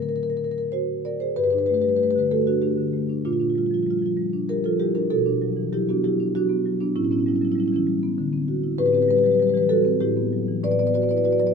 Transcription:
Already playing: D3 F#3 C4
0.02 A#4
0.09 A#4
0.16 A#4
0.23 A#4
0.30 A#4
0.37 A#4
0.44 A#4
0.51 A#4
0.58 A#4
0.72 F#4 C5
1.05 A#4 D5
1.20 G#4 C5
1.36 G2 G4 B4
1.44 G4 B4
1.51 D4 G4 B4
1.58 G4 B4
1.66 A3 G4 B4
1.74 G4 B4
1.82 G3 G4 B4
1.89 G4 B4
1.96 A3 G4 B4
2.03 G4 B4
2.10 G4 B4
2.16 D3 G4 B4
2.31 A3 F#4 A4
2.47 D4 F#4
2.62 A3 D4 G4
2.77 D3
2.93 A3
3.09 D4
3.25 A#2 D4 F4
3.33 D4 F4
3.40 D4 F4
3.50 F4
3.55 G3 F4
3.66 F4
3.71 F3 F4
3.83 G3 F4
3.91 F4
3.99 F3 F4
4.06 F4
4.17 G3
4.33 D4
4.49 G3 G4 A#4
4.64 F3 F4 A4
4.80 G3 E4 G4
4.95 D4 G4 A#4
5.10 B2 F#4 A4
5.26 D4
5.42 F#3
5.57 E3
5.72 F#3 E4 G4
5.89 B3 D4 F#4
6.04 F#3 E4 G4
6.20 D4
6.35 F#3 D4 F#4
6.49 B3
6.66 F#3
6.81 B3 D4
6.96 A2 C#4 E4
7.03 C#4 E4
7.11 B3 C#4 E4
7.19 C#4 E4
7.26 G3 C#4 E4
7.35 C#4 E4
7.41 F#3 C#4 E4
7.51 C#4 E4
7.56 G3 C#4
7.60 E4
7.66 C#4 E4
7.73 E3 C#4 E4
7.87 G3
8.03 B3
8.18 D3
8.33 C4
8.48 F#4
8.64 E4
8.78 A2 G4 B4
8.86 G4 B4
8.93 C4 G4 B4
9.01 G4 B4
9.08 G3 G4 B4
9.16 G4 B4
9.24 F#3 G4 B4
9.31 G4 B4
9.39 G3 G4 B4
9.47 G4 B4
9.54 E3 G4 B4
9.63 G4
9.69 G3 F#4 A4
9.85 C4
10.01 A2 E4 G4
10.17 B3
10.33 F#3
10.48 E3
10.63 A2 B4 D5
10.71 B4 D5
10.79 B3 B4 D5
10.87 B4 D5
10.94 F#4 B4 D5
11.02 B4 D5
11.09 E4 B4 D5
11.17 B4 D5
11.24 F#4 B4 D5
11.31 B4 D5
11.38 F#3 B4 D5
11.46 B4 D5

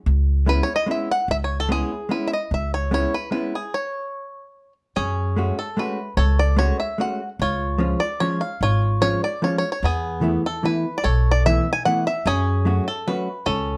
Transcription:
0.06 C#2
0.46 G#3 B3 C#4 E4 B4
0.63 C#5
0.76 D#5
0.86 G#3 B3 C#4 E4
0.91 E5
1.11 F#5
1.28 C#2 E5
1.44 C#5
1.60 A4
1.69 G#3 B3 C#4 E4 G#4
2.09 G#3 B3 C#4 E4 B4
2.28 E5
2.33 D#5
2.51 C#2 E5
2.74 C#5
2.91 G#3 B3 C#4 E4 C#5
3.14 B4
3.31 G#3 B3 C#4 E4 B4
3.55 G#4
3.74 C#5
4.96 F#2 C#4 G#4
5.36 G#3 A3 C#4 F#4
5.59 A4
5.77 G#3 A3 C#4 F#4 B4
6.17 C#2 A4 C#5
6.39 D5
6.57 G#3 A3 C#4 F#4 C#5
6.80 E5
6.98 G#3 A3 C#4 F#4 F#5
7.39 C#2 F4 C#5
7.78 F3 G#3 C#4 F4
8.00 D5
8.20 F3 G#3 C#4 F4 C#5
8.41 F5
8.61 G#1 F4 C#5
9.02 F3 G#3 C#4 F4 C#5
9.24 D5
9.42 F3 G#3 C#4 F4 C#5
9.58 C#5
9.72 C#5
9.83 E2 B3 G#4
10.21 E3 A3 B3 E4
10.46 A4
10.63 E3 A3 B3 E4 B4
10.98 D5
11.04 B1 A4 C#5
11.31 D5
11.46 E3 A3 B3 E4 E5
11.73 G#5
11.85 E3 A3 B3 E4 F#5
12.07 E5
12.26 F#2 C#4 G#4
12.65 F#3 A3 C#4 F#4
12.88 A4
13.08 F#3 A3 C#4 F#4 B4
13.46 C#2 C#4 A4

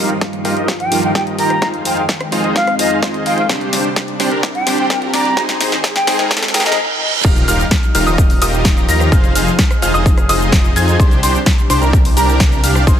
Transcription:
Already playing: G2 D#3 F3 G3 A#3 D#4 F4 G4 A#4 F5, riser
0.10 closed hi-hat
0.21 kick, snare, closed hi-hat
0.33 closed hi-hat
0.44 G3 A#3 D#4 F4 G4 A#4 F5, open hi-hat
0.56 D#4 F4 G4 A#4 D#5, closed hi-hat
0.68 kick, snare, closed hi-hat
0.80 G5, closed hi-hat
0.91 G3 A#3 D#4 F4 G4 A#4 F5, open hi-hat
1.03 G5, closed hi-hat
1.15 D#4 F4 G4 A#4 D#5 G5, kick, snare, closed hi-hat
1.27 closed hi-hat
1.39 D#4 F4 G4 A#4 G5 A#5, open hi-hat
1.50 cross-stick, closed hi-hat
1.61 F2 G#3 C4 D#4 F4 G#4 C5 F5, kick, snare, closed hi-hat
1.74 closed hi-hat
1.85 D#4 F4 G#4 C5 F5 G5, open hi-hat
1.97 G5, closed hi-hat
2.09 kick, snare, closed hi-hat
2.21 cross-stick, closed hi-hat
2.31 G#3 C4 D#4 F4 G#4 C5 F5, open hi-hat
2.44 D#4 F4 G#4 C5 D#5, closed hi-hat
2.56 F5, kick, snare, closed hi-hat
2.67 cross-stick, closed hi-hat
2.79 D#4 F4 G#4 C5 D#5 F5, open hi-hat
2.91 closed hi-hat
3.02 D#4 F4 G#4 C5 D#5, kick, snare, closed hi-hat
3.14 closed hi-hat
3.26 D#4 F4 G#4 C5 F5 G5, open hi-hat
3.38 F5, closed hi-hat
3.48 C3 G3 C4 D4 G4 C5, kick, snare, closed hi-hat
3.61 closed hi-hat
3.73 D4 G4 C5, snare, open hi-hat
3.85 closed hi-hat
3.96 kick, snare, closed hi-hat
4.08 closed hi-hat
4.19 C3 G3 C4 D4 G4 C5, snare, open hi-hat
4.31 D4 G4 A#4, closed hi-hat
4.43 kick, snare, closed hi-hat
4.55 G5, closed hi-hat
4.66 C3 G3 C4 D4 G4 C5, snare, open hi-hat
4.78 G5
4.90 D4 G4 A#4 G5, kick, snare, closed hi-hat
5.02 closed hi-hat
5.13 D4 G4 D5 A#5, snare, open hi-hat
5.25 closed hi-hat
5.36 G#2 D#3 G#3 C4 D#4 G#4 C5, kick, snare, closed hi-hat
5.49 snare, closed hi-hat
5.60 D#4 G#4 C5, snare, open hi-hat
5.72 snare, closed hi-hat
5.84 kick, snare, closed hi-hat
5.95 G5, snare, closed hi-hat
6.07 G#2 G#3 C4 D#4 G#4 C5, snare, open hi-hat
6.19 D#4 G#4 A#4, snare, closed hi-hat
6.31 kick, snare, closed hi-hat, reverse cymbal
6.37 snare
6.43 snare, closed hi-hat
6.48 snare
6.53 G#2 G#3 C4 D#4 F4 G#4 A#4 G5, snare, open hi-hat
6.60 snare
6.65 G#2 G#3 C4 D#4 G#4 D#5, snare, closed hi-hat
6.72 snare
7.24 D#1 F3 G3 D#4 F4 G4 A#4 F5 F6, kick, closed hi-hat, crash, impact, shaker
7.36 closed hi-hat, shaker
7.48 D#1 D#4 F4 G4 A#4 F5 F6, open hi-hat, shaker
7.60 closed hi-hat, shaker
7.71 kick, snare, closed hi-hat, shaker
7.83 closed hi-hat, shaker
7.95 D#1 D#4 F4 G4 A#4 F5 F6, open hi-hat, shaker
8.06 D#1 D#4 F4 G4 A#4 D#5 D#6, closed hi-hat, shaker
8.18 kick, closed hi-hat, shaker
8.30 open hi-hat, shaker
8.42 D#1 D#4 F4 G4 A#4 D#5 D#6, open hi-hat, shaker
8.53 closed hi-hat, shaker
8.65 kick, snare, closed hi-hat, shaker
8.77 closed hi-hat, shaker
8.89 D#2 D#4 F4 G4 A#4 A#5 A#6, open hi-hat, shaker
9.00 cross-stick, closed hi-hat, shaker
9.12 F1 D#4 F4 G#4 C5 F5 F6, kick, closed hi-hat, shaker
9.24 closed hi-hat, shaker
9.35 F1 D#4 F4 G#4 C5 F5 F6, open hi-hat, shaker
9.48 shaker
9.59 kick, snare, closed hi-hat, shaker
9.71 cross-stick, closed hi-hat, shaker
9.82 F1 D#4 F4 G#4 C5 F5 F6, open hi-hat, shaker
9.94 F1 D#4 F4 G#4 C5 D#5 D#6, closed hi-hat, shaker
10.06 kick, closed hi-hat, shaker
10.18 cross-stick, closed hi-hat, shaker
10.29 F1 D#4 F4 G#4 C5 D#5 D#6, open hi-hat, shaker
10.41 closed hi-hat, shaker
10.52 kick, snare, closed hi-hat, shaker
10.64 closed hi-hat, shaker
10.76 F2 D#4 F4 G#4 C5 G#5 G#6, open hi-hat, shaker
10.88 closed hi-hat, shaker
10.99 C2 C3 G3 D4 C6, kick, closed hi-hat, shaker
11.11 closed hi-hat, shaker
11.23 C2 D4 G4 C5 C6, open hi-hat, shaker
11.35 shaker
11.46 kick, snare, closed hi-hat, shaker
11.58 closed hi-hat, shaker
11.70 C2 D4 G4 C5 C6, open hi-hat, shaker
11.81 C2 D4 G4 A#4 A#5, shaker
11.93 kick, closed hi-hat, shaker
12.05 open hi-hat, shaker
12.17 C2 D4 G4 A#4 A#5, open hi-hat, shaker
12.29 closed hi-hat, shaker
12.40 kick, snare, closed hi-hat, shaker
12.52 closed hi-hat, shaker
12.64 C2 D4 G4 F5 F6, open hi-hat, shaker
12.75 cross-stick, closed hi-hat, shaker
12.87 G#1 D#3 G#3 C4 D#4 G#4 C5 C6, kick, closed hi-hat, shaker

